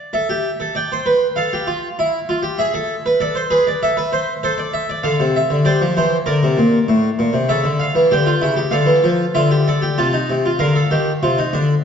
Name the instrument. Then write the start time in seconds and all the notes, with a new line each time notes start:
harpsichord
Already playing: D5
0.13 A4 E5
0.30 G4
0.60 A4
0.75 D5 G5
0.92 C5
1.06 B4
1.36 A4 F5
1.53 G4
1.67 F4
1.99 E4
2.29 F4
2.43 G4
2.59 G#4 E5
2.74 A4
3.06 B4
3.20 A4 D5
3.35 C5
3.50 G#4 B4
3.67 D5
3.83 A4 E5
3.97 B4
4.13 C5
4.43 A4 C5
4.58 D5
4.74 E5
4.90 D5
5.03 D3 A4 F5
5.20 C3
5.36 E5
5.50 D3
5.65 G3 C5 D5
5.82 F3
5.97 E3 C5
6.26 D3 A#4 D5
6.43 C3
6.58 A#2
6.88 A2
7.19 A#2
7.33 C3
7.49 C#3 A4 E5
7.64 D3
7.80 F5
7.95 E3
8.11 D3 G4 G5
8.26 F4
8.41 C#3 E4
8.56 G4
8.71 D3 A4 F5
8.86 E3
9.04 F3
9.35 D3 F4 E5
9.51 G4
9.68 A4 D5
9.82 G4
9.98 C3 F4 A5
10.13 D#4
10.30 C3
10.46 F4
10.59 D3 A#4 F5
10.75 A4
10.91 D#3 G4
11.23 C3 F4
11.38 D#4
11.53 D3 D4